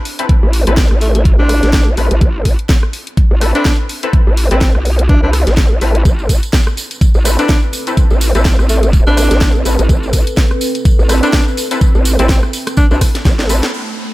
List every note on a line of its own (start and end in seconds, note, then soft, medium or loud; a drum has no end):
0.05 open hi-hat loud
0.19 0.64 C4 medium
0.19 0.64 E4 medium
0.19 0.64 A4 medium
0.19 0.64 B4 loud
0.19 closed hi-hat medium
0.29 kick loud
0.29 closed hi-hat medium
0.43 0.65 A1 medium
0.53 open hi-hat loud
0.67 0.89 A1 medium
0.67 0.79 C4 medium
0.67 0.79 E4 medium
0.67 0.79 A4 medium
0.67 0.79 B4 loud
0.67 closed hi-hat medium
0.77 kick loud
0.77 snare loud
0.77 closed hi-hat medium
0.91 1.37 A1 loud
0.91 cross-stick medium
1.01 1.10 A3 medium
1.01 open hi-hat loud
1.15 1.22 A3 medium
1.15 closed hi-hat medium
1.25 kick loud
1.25 closed hi-hat medium
1.39 1.61 A1 medium
1.39 1.51 C4 medium
1.39 1.87 D4 medium
1.39 1.51 E4 medium
1.39 1.51 A4 medium
1.39 1.51 B4 medium
1.49 cross-stick medium
1.49 open hi-hat loud
1.63 1.96 A1 loud
1.63 snare soft
1.63 closed hi-hat medium
1.73 kick loud
1.73 snare loud
1.73 closed hi-hat medium
1.97 2.09 A1 loud
1.97 2.12 C4 medium
1.97 2.12 E4 medium
1.97 2.12 A4 medium
1.97 2.12 B4 medium
1.97 open hi-hat loud
2.11 2.20 A1 loud
2.11 closed hi-hat medium
2.21 2.57 A1 loud
2.21 kick loud
2.21 closed hi-hat medium
2.45 kick medium
2.45 open hi-hat loud
2.59 closed hi-hat medium
2.69 kick loud
2.69 snare loud
2.69 closed hi-hat soft
2.83 cross-stick medium
2.93 open hi-hat loud
3.07 closed hi-hat medium
3.17 kick loud
3.17 closed hi-hat medium
3.31 3.53 A1 loud
3.41 3.53 C4 medium
3.41 3.53 E4 medium
3.41 3.53 A4 medium
3.41 3.53 B4 medium
3.41 cross-stick medium
3.41 open hi-hat loud
3.55 3.67 C4 loud
3.55 3.76 D4 medium
3.55 3.67 E4 medium
3.55 3.67 A4 medium
3.55 3.67 B4 loud
3.55 closed hi-hat medium
3.65 kick loud
3.65 snare loud
3.65 closed hi-hat medium
3.89 open hi-hat loud
4.03 4.48 C4 medium
4.03 4.48 E4 medium
4.03 4.48 A4 medium
4.03 4.48 B4 loud
4.03 closed hi-hat medium
4.13 kick loud
4.13 closed hi-hat medium
4.27 4.49 A1 loud
4.37 open hi-hat loud
4.51 4.73 A1 loud
4.51 4.58 C4 medium
4.51 4.63 C4 medium
4.51 4.63 E4 medium
4.51 4.63 A4 medium
4.51 4.63 B4 loud
4.51 closed hi-hat medium
4.61 4.70 C4 medium
4.61 kick loud
4.61 snare loud
4.61 closed hi-hat soft
4.75 5.21 B1 loud
4.75 cross-stick medium
4.85 open hi-hat loud
4.99 closed hi-hat medium
5.09 5.18 D4 medium
5.09 kick loud
5.09 closed hi-hat medium
5.23 5.45 C2 medium
5.23 5.35 C4 medium
5.23 5.30 D4 medium
5.23 5.35 E4 medium
5.23 5.35 A4 medium
5.23 5.35 B4 medium
5.33 cross-stick medium
5.33 open hi-hat loud
5.47 5.80 A1 loud
5.47 snare soft
5.47 closed hi-hat medium
5.57 kick loud
5.57 snare loud
5.57 closed hi-hat medium
5.81 6.04 A1 medium
5.81 6.03 C4 medium
5.81 6.03 E4 medium
5.81 6.03 A4 medium
5.81 6.03 B4 medium
5.81 open hi-hat loud
5.95 closed hi-hat medium
6.05 6.41 A1 medium
6.05 13.69 C4 medium
6.05 13.69 A4 medium
6.05 13.69 B4 medium
6.05 kick loud
6.05 closed hi-hat medium
6.05 tambourine medium
6.19 tambourine soft
6.29 kick medium
6.29 open hi-hat loud
6.29 tambourine medium
6.43 closed hi-hat medium
6.43 tambourine soft
6.53 kick loud
6.53 snare loud
6.53 closed hi-hat medium
6.53 tambourine medium
6.67 cross-stick medium
6.67 tambourine soft
6.77 open hi-hat loud
6.77 tambourine medium
6.91 closed hi-hat medium
6.91 tambourine soft
7.01 kick loud
7.01 closed hi-hat medium
7.01 tambourine medium
7.14 7.37 A1 loud
7.14 tambourine soft
7.25 7.37 C4 medium
7.25 7.37 E4 medium
7.25 7.37 A4 medium
7.25 7.37 B4 medium
7.25 cross-stick medium
7.25 open hi-hat loud
7.25 tambourine medium
7.39 7.51 C4 loud
7.39 7.60 D4 medium
7.39 7.51 E4 medium
7.39 7.51 A4 medium
7.39 7.51 B4 loud
7.39 closed hi-hat medium
7.39 tambourine soft
7.49 kick loud
7.49 snare loud
7.49 closed hi-hat soft
7.49 tambourine soft
7.63 tambourine soft
7.73 open hi-hat loud
7.73 tambourine medium
7.87 8.32 C4 loud
7.87 8.32 E4 medium
7.87 8.32 A4 medium
7.87 8.32 B4 loud
7.87 closed hi-hat medium
7.87 tambourine soft
7.97 kick loud
7.97 closed hi-hat medium
7.97 tambourine medium
8.10 8.33 A1 loud
8.10 tambourine soft
8.21 open hi-hat loud
8.21 tambourine medium
8.35 8.57 A1 loud
8.35 8.47 C4 medium
8.35 8.47 E4 medium
8.35 8.47 A4 medium
8.35 8.47 B4 medium
8.35 closed hi-hat medium
8.35 tambourine soft
8.45 kick loud
8.45 snare loud
8.45 closed hi-hat soft
8.45 tambourine soft
8.59 9.05 A1 loud
8.59 cross-stick medium
8.59 tambourine soft
8.69 8.78 A3 medium
8.69 open hi-hat loud
8.69 tambourine medium
8.83 8.90 A3 medium
8.83 closed hi-hat medium
8.83 tambourine soft
8.93 kick loud
8.93 closed hi-hat medium
8.93 tambourine medium
9.07 9.29 A1 loud
9.07 9.19 C4 medium
9.07 9.55 D4 medium
9.07 9.19 E4 medium
9.07 9.19 A4 medium
9.07 9.19 B4 medium
9.07 tambourine soft
9.17 cross-stick medium
9.17 open hi-hat loud
9.17 tambourine medium
9.31 9.64 A1 loud
9.31 snare soft
9.31 closed hi-hat medium
9.31 tambourine soft
9.41 kick loud
9.41 snare loud
9.41 closed hi-hat medium
9.41 tambourine medium
9.55 tambourine soft
9.65 9.77 A1 loud
9.65 9.80 C4 medium
9.65 9.80 E4 medium
9.65 9.80 A4 medium
9.65 9.80 B4 medium
9.65 open hi-hat loud
9.65 tambourine medium
9.79 9.88 A1 loud
9.79 closed hi-hat medium
9.79 tambourine soft
9.89 10.25 A1 medium
9.89 kick loud
9.89 closed hi-hat medium
9.89 tambourine soft
10.03 tambourine soft
10.13 kick medium
10.13 open hi-hat loud
10.13 tambourine medium
10.27 closed hi-hat medium
10.27 tambourine soft
10.37 kick loud
10.37 snare loud
10.37 closed hi-hat medium
10.37 tambourine medium
10.51 cross-stick medium
10.51 tambourine soft
10.61 open hi-hat loud
10.61 tambourine medium
10.75 closed hi-hat medium
10.75 tambourine soft
10.85 kick loud
10.85 closed hi-hat medium
10.85 tambourine medium
10.99 11.21 A1 loud
10.99 tambourine soft
11.09 11.21 C4 medium
11.09 11.21 E4 medium
11.09 11.21 A4 medium
11.09 11.21 B4 medium
11.09 cross-stick medium
11.09 open hi-hat loud
11.09 tambourine medium
11.23 11.35 C4 loud
11.23 11.44 D4 loud
11.23 11.35 E4 medium
11.23 11.35 A4 medium
11.23 11.35 B4 loud
11.23 closed hi-hat medium
11.23 tambourine soft
11.33 kick loud
11.33 snare loud
11.33 closed hi-hat medium
11.33 tambourine medium
11.48 tambourine soft
11.57 open hi-hat loud
11.57 tambourine medium
11.71 12.16 C4 medium
11.71 12.16 E4 medium
11.71 12.16 A4 medium
11.71 12.16 B4 loud
11.71 closed hi-hat medium
11.71 tambourine soft
11.81 kick loud
11.81 closed hi-hat medium
11.81 tambourine soft
11.95 12.17 A1 loud
11.95 tambourine soft
12.05 open hi-hat loud
12.05 tambourine medium
12.19 12.41 A1 loud
12.19 12.26 C4 medium
12.19 12.31 C4 medium
12.19 12.31 E4 medium
12.19 12.31 A4 medium
12.19 12.31 B4 loud
12.19 closed hi-hat medium
12.19 tambourine soft
12.29 12.38 C4 medium
12.29 kick loud
12.29 snare loud
12.29 closed hi-hat medium
12.29 tambourine medium
12.43 cross-stick medium
12.43 tambourine soft
12.53 open hi-hat loud
12.53 tambourine medium
12.67 cross-stick medium
12.67 closed hi-hat medium
12.67 tambourine soft
12.77 12.86 D4 loud
12.77 kick loud
12.77 closed hi-hat medium
12.77 tambourine medium
12.91 13.00 B1 medium
12.91 13.03 C4 medium
12.91 12.98 D4 medium
12.91 13.03 E4 medium
12.91 13.03 A4 medium
12.91 13.03 B4 medium
12.91 tambourine soft
13.01 kick medium
13.01 cross-stick medium
13.01 open hi-hat loud
13.01 tambourine medium
13.15 snare soft
13.15 closed hi-hat medium
13.15 tambourine soft
13.25 13.61 A1 loud
13.25 kick loud
13.25 snare medium
13.25 closed hi-hat medium
13.25 tambourine medium
13.39 snare medium
13.39 tambourine soft
13.49 13.64 C4 medium
13.49 13.64 E4 medium
13.49 13.64 A4 medium
13.49 13.64 B4 medium
13.49 open hi-hat loud
13.49 tambourine medium
13.63 snare medium
13.63 closed hi-hat medium
13.63 tambourine soft
13.73 14.14 A3 medium
13.73 14.14 C4 medium
13.73 14.14 A4 medium
13.73 14.14 B4 medium
13.73 downlifter medium